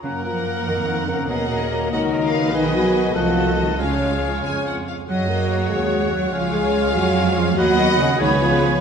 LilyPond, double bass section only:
\new Staff \with { instrumentName = "Double bass section" } { \clef bass \time 6/8 \key fis \major \tempo 4. = 96 fis,4. eis,4. | dis,4. cis,4. | b,,4. c,4. | cis,4. eis,4 r8 |
fis,4. dis,4. | cis,4. eis,4. | dis,4. cis,4. | }